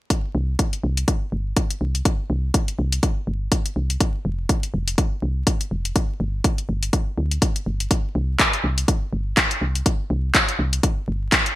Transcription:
0.10 kick, closed hi-hat
0.35 C2
0.59 kick, closed hi-hat
0.73 closed hi-hat
0.83 C2
0.97 closed hi-hat
1.08 kick, closed hi-hat
1.32 G1
1.57 kick, closed hi-hat
1.71 closed hi-hat
1.81 C2
1.95 closed hi-hat
2.05 kick, closed hi-hat
2.30 C2
2.54 kick, closed hi-hat
2.68 closed hi-hat
2.79 C2
2.92 closed hi-hat
3.03 kick, closed hi-hat
3.27 G1
3.52 kick, closed hi-hat
3.66 closed hi-hat
3.76 C2
3.90 closed hi-hat
4.00 kick, closed hi-hat
4.25 F1
4.49 kick, closed hi-hat
4.63 closed hi-hat
4.74 F1
4.88 closed hi-hat
4.98 kick, closed hi-hat
5.22 C2
5.47 kick, closed hi-hat
5.61 closed hi-hat
5.71 F1
5.85 closed hi-hat
5.96 kick, closed hi-hat
6.20 G1
6.44 kick, closed hi-hat
6.58 closed hi-hat
6.69 G1
6.83 closed hi-hat
6.93 kick, closed hi-hat
7.18 D2
7.31 closed hi-hat
7.42 kick, closed hi-hat
7.56 closed hi-hat
7.66 G1
7.80 closed hi-hat
7.91 kick, closed hi-hat
8.15 C2
8.39 kick, clap, closed hi-hat
8.53 closed hi-hat
8.64 C2
8.78 closed hi-hat
8.88 kick, closed hi-hat
9.13 G1
9.37 kick, clap, closed hi-hat
9.51 closed hi-hat
9.61 C2
9.75 closed hi-hat
9.86 kick, closed hi-hat
10.10 C2
10.35 kick, clap, closed hi-hat
10.49 closed hi-hat
10.59 C2
10.73 closed hi-hat
10.83 kick, closed hi-hat
11.08 G1
11.32 kick, clap, closed hi-hat
11.46 closed hi-hat

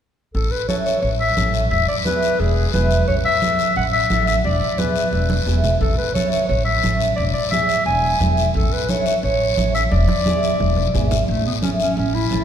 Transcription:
0.35 A1 A4, high conga, long guiro
0.51 B4
0.68 C#4 E4 A4 C#5, high conga, short guiro
0.85 C#5, short guiro
1.01 A1 C#5, high conga, long guiro
1.20 E5
1.36 A1 C#4 E4 A4, high conga, short guiro
1.54 short guiro
1.71 E1 E5, high conga, long guiro
1.88 D5
2.05 B3 E4 G#4 B4, high conga, short guiro
2.22 short guiro
2.39 E1 G#4, high conga, long guiro
2.73 E1 B3 E4 G#4 B4, high conga, short guiro
2.91 short guiro
3.08 A1 C#5, high conga, long guiro
3.25 E5
3.42 C#4 E4 A4, high conga, short guiro
3.59 short guiro
3.76 A1 F#5, high conga, long guiro
3.93 E5
4.10 A1 C#4 E4 A4, high conga, short guiro
4.27 E5, short guiro
4.44 E1 D5, high conga, long guiro
4.78 B3 E4 G#4 B4, high conga, short guiro
4.96 short guiro
5.13 E1, high conga, long guiro
5.30 high conga
5.46 E1 B3 E4 G#4, short guiro
5.64 low conga, short guiro
5.81 A1 A4, high conga, long guiro
5.98 B4
6.14 C#4 E4 A4 C#5, high conga, short guiro
6.31 C#5, short guiro
6.48 A1 C#5, high conga, long guiro
6.65 E5
6.83 A1 C#4 E4 A4, high conga, short guiro
7.00 short guiro
7.16 E1 D5, high conga, long guiro
7.33 D5
7.51 B3 E4 G#4 E5, high conga, short guiro
7.69 short guiro
7.86 E1 G#5, high conga, long guiro
8.20 E1 B3 E4 G#4, high conga, short guiro
8.37 short guiro
8.54 A1 A4, high conga, long guiro
8.73 B4
8.89 C#4 E4 A4 C#5, high conga, short guiro
9.06 C#5, short guiro
9.23 A1 C#5, high conga, long guiro
9.57 A1 C#4 E4 A4, high conga, short guiro
9.75 E5, short guiro
9.92 E1 D5, high conga, long guiro
10.08 high conga
10.26 B3 E4 G#4, high conga, short guiro
10.43 short guiro
10.60 E1, low conga, long guiro
10.77 low conga
10.94 G#1 B3 E4 G#4, low conga, short guiro
11.11 low conga, short guiro
11.28 A1 A3, high conga, long guiro
11.46 B3
11.62 C#4 E4 A4, high conga, short guiro
11.80 C#4, short guiro
11.97 A1 C#4, high conga, long guiro
12.15 E4
12.31 A1 C#4 E4 A4, high conga, short guiro

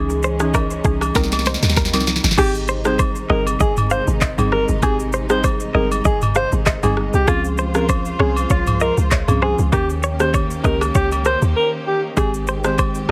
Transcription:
Already playing: C#2 E3 G#3 C#4 D#4 G#4
0.10 shaker
0.23 C5, shaker
0.39 E3 C#4 D#4 G#4, cross-stick, shaker
0.54 A#4, kick, high agogo, low woodblock, shaker
0.70 shaker
0.84 C2 E3 C#4 D#4 G#4, kick, shaker
1.01 cross-stick, high agogo, shaker
1.15 C2 C3 D#3 G3 A#3 C4 D#4 A#4, kick, snare, shaker
1.24 snare
1.32 snare, high agogo, shaker
1.39 snare
1.45 C5, snare, shaker
1.54 snare
1.62 D#2, snare, shaker
1.70 snare
1.76 A#4, kick, snare, shaker
1.85 snare
1.93 C2 G3 C4 D#4 A#4, snare, high agogo, shaker
2.00 snare
2.07 snare, shaker
2.16 snare
2.24 G1, snare, shaker
2.31 snare
2.37 G#1 C3 D#3 G#3 C4 D#4 G4 G#4, kick, crash, high agogo, shaker
2.55 shaker
2.68 C5, shaker
2.85 G3 C4 D#4 G#4 C5, cross-stick, shaker
2.99 C5, kick, high agogo, shaker
3.15 shaker
3.29 G1 G3 C4 D#4 G#4 A#4 D#5, cross-stick
3.47 high agogo, shaker
3.60 G1 G#4 D#5, kick, shaker
3.77 mid tom, high agogo, shaker
3.90 C5 F5, shaker
4.07 G#1, shaker
4.21 D#5, kick, clap, low woodblock, shaker
4.38 G1 G3 C4 D#4 G#4, mid tom, high agogo, shaker
4.52 A#4, cross-stick
4.68 G1, shaker
4.82 G#1 C4 D#4 G4 G#4, kick, high agogo, shaker
5.00 shaker
5.13 C5, shaker
5.29 G3 C4 D#4 G#4 C5, cross-stick, shaker
5.44 C5, kick, high agogo, shaker
5.60 shaker
5.74 G1 G3 C4 D#4 G#4 A#4 D#5
5.92 high agogo, shaker
6.04 G1 G#4 D#5, kick, shaker
6.22 mid tom, high agogo, shaker
6.35 C5 F5, cross-stick, shaker
6.52 G#1, shaker
6.66 D#5, kick, cross-stick, clap, low woodblock, shaker
6.83 G1 G3 C4 D#4 G#4, mid tom, high agogo, shaker
6.97 cross-stick
7.13 C2 G4, shaker
7.27 C#2 F3 C4 C#4 F4 G#4 C5, kick, high agogo, shaker
7.44 shaker
7.58 C5, shaker
7.74 F3 C4 C#4 G#4 A#4, cross-stick, shaker
7.89 C5, kick, high agogo, shaker
8.05 shaker
8.19 C2 F3 C4 C#4 G#4 C#5, cross-stick
8.36 high agogo, shaker
8.50 C2 F4 C#5, kick, shaker
8.67 mid tom, high agogo, shaker
8.80 A#4 D#5, shaker
8.97 C#2, shaker
9.11 C#5, kick, clap, low woodblock, shaker
9.28 C2 F3 C4 C#4 G#4, mid tom, high agogo, shaker
9.42 G#4 C5, cross-stick
9.58 C#2, shaker
9.72 D#2 D#3 A#3 C#4 G4 A#4, kick, high agogo, shaker
9.90 shaker
10.03 C#5, shaker
10.19 D#3 A#3 C#4 G4 C5, cross-stick, shaker
10.34 C#5, kick, high agogo, shaker
10.50 shaker
10.64 C#2 D#3 A#3 C#4 G4 A#4 D#5, kick, cross-stick, shaker
10.81 cross-stick, high agogo, shaker
10.95 C#2 G4 C#5, kick, shaker
11.12 high agogo, shaker
11.25 A#4 C5, cross-stick, shaker
11.42 D#2, shaker
11.56 A#4
11.87 G4
12.17 G#1 D#3 G#3 C4 G4 G#4, kick, high agogo, shaker
12.34 shaker
12.47 C5, shaker
12.64 D#3 G#3 C4 G4 C5, cross-stick, shaker
12.78 C5, kick, high agogo, shaker
12.95 shaker

